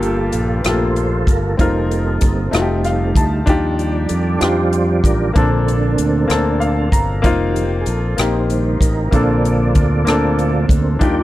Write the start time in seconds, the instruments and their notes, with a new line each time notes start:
Already playing: fingered electric bass G1, grand piano G2 A#3 F4 G4 A4, tonewheel organ A#3 F4 A4
0.02 tonewheel organ G4, closed hi-hat
0.27 tonewheel organ A#4
0.32 fingered electric bass A#1, tonewheel organ A4, closed hi-hat
0.57 tonewheel organ B4
0.64 fingered electric bass A#1, grand piano A3 F4 G4 A4, tonewheel organ F4 A4 C5, cross-stick, closed hi-hat
0.70 grand piano A#3
0.96 closed hi-hat
1.27 fingered electric bass G1, tonewheel organ A#4, kick, closed hi-hat
1.57 fingered electric bass F1, tonewheel organ G3 A#3 C4 D#4 A4, grand piano C4 D#4 F4 A#4, kick, closed hi-hat
1.91 closed hi-hat
2.21 fingered electric bass G1, kick, closed hi-hat
2.51 fingered electric bass F1, tonewheel organ G3 A3 D#4, grand piano A3 D#4 F4 F#4, cross-stick, closed hi-hat
2.62 grand piano G4
2.84 grand piano F5, cross-stick, closed hi-hat
3.15 fingered electric bass D2, grand piano A5, kick, closed hi-hat
3.46 fingered electric bass D#2, grand piano D#3 D4 D#4 F4 G4, tonewheel organ F3 G3 D5, kick, closed hi-hat
3.77 tonewheel organ G4, closed hi-hat
4.09 fingered electric bass F2, tonewheel organ A4, closed hi-hat
4.39 fingered electric bass F2, grand piano D4 D#4 F4, tonewheel organ F4 G4 C5, cross-stick, closed hi-hat
4.43 grand piano G4
4.73 closed hi-hat
5.03 fingered electric bass A1, tonewheel organ F3 G3 D4 A#4, kick, closed hi-hat
5.33 fingered electric bass A#1, grand piano A#2 A#3 C4 D4, tonewheel organ D3 A#3 C4 D4 A4, kick, closed hi-hat
5.37 grand piano A4
5.68 closed hi-hat
5.98 fingered electric bass D2, closed hi-hat
6.28 fingered electric bass D2, grand piano A#3 C4 D4 A4, cross-stick, closed hi-hat
6.60 grand piano F5, closed hi-hat
6.92 fingered electric bass G1, grand piano A#5, kick, closed hi-hat
7.22 fingered electric bass F1, tonewheel organ D#3 G3 A#3, grand piano A#3 C4 D#4 F4, kick, closed hi-hat
7.48 tonewheel organ F#4
7.55 tonewheel organ G4, closed hi-hat
7.81 tonewheel organ G#4
7.86 fingered electric bass A#1, tonewheel organ A4, closed hi-hat
8.17 fingered electric bass A#1, grand piano A#3 C4 D#4 G4, tonewheel organ D#4 C5, cross-stick, closed hi-hat
8.49 tonewheel organ D#3 G3 A#3, closed hi-hat
8.81 fingered electric bass A1, tonewheel organ A#4, kick, closed hi-hat
9.11 fingered electric bass A#1, grand piano A#2 A#3 C4 D4, tonewheel organ D3 A#3 C4 F4 A4 D5, kick, closed hi-hat
9.15 grand piano A4
9.45 closed hi-hat
9.75 fingered electric bass D2, kick, closed hi-hat
10.05 fingered electric bass D2, grand piano A#3 C4 D4 A4, cross-stick, closed hi-hat
10.39 closed hi-hat
10.69 fingered electric bass D2, kick, closed hi-hat
10.99 fingered electric bass D#2, grand piano D#3 D4 D#4 F4, french horn section D#3 G3 F4, tonewheel organ F3 G3 F4 A#4 D5 G5, kick, closed hi-hat
11.03 grand piano G4